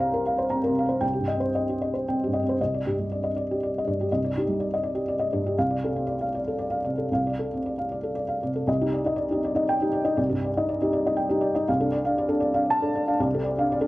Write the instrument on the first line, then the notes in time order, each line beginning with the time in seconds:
felt piano
Already playing: C2 C3 C4 A#4 C5 A#5
0.00 F5
0.14 A#4
0.26 F5
0.38 C5
0.50 C4 A#5
0.64 A#4
0.69 C3
0.79 F5
0.86 C4 C5
1.01 C2 G5
1.13 G4
1.19 G2
1.28 D#5
1.35 C4
1.40 C5
1.55 D#5
1.69 G4
1.81 D#5
1.94 C5
2.08 C4 G5
2.24 G2 G4
2.33 D#5
2.43 C4
2.49 C5
2.61 C2 D#5
2.74 D5
2.86 G2 G4
2.99 G3
3.11 D5
3.24 D#5
3.36 D5
3.51 G4
3.63 D5
3.78 D#5
3.87 G2 D5
4.01 G4
4.12 C2 D#5
4.24 D5
4.37 D#4 G4
4.48 G3
4.60 D5
4.74 D#5
4.83 D5
4.95 G4
5.08 D5
5.19 D#5
5.33 G2 D5
5.46 G4
5.58 C2 F5
5.71 D5
5.84 C3 A4
5.96 C4
6.07 D5
6.21 F5
6.35 D5
6.48 A4
6.58 D5
6.70 F5
6.84 C3 D5
6.98 A4
7.12 C2 F5
7.27 D5
7.39 A4
7.54 C4
7.66 D5
7.78 F5
7.92 D5
8.03 A4
8.15 D5
8.28 F5
8.43 C3 D5
8.55 A4
8.67 C2 D#5
8.81 D#4 G4
8.93 D5
9.05 D#4 D#5
9.16 D5
9.31 D#4 G4
9.45 D5
9.55 D#4 D#5
9.69 G5
9.82 D#4 G4
9.93 D5
10.04 D#4 D#5
10.17 C2 D5
10.29 G2 G4
10.44 D5
10.57 D#4 D#5
10.69 D5
10.82 D#4 G4
10.93 D5
11.07 D#4 D#5
11.17 G5
11.29 D#4 G4
11.41 D5
11.55 D#4 D#5
11.68 C2 F5
11.80 D4 A4
11.92 D5
12.05 D4 F5
12.18 D5
12.29 D4 A4
12.40 D5
12.54 D4 F5
12.70 A5
12.82 D4 A4
12.95 D5
13.07 D4 F5
13.20 C2 D5
13.34 C3 A4
13.44 D5
13.58 D4 F5
13.72 D5
13.81 D4 A4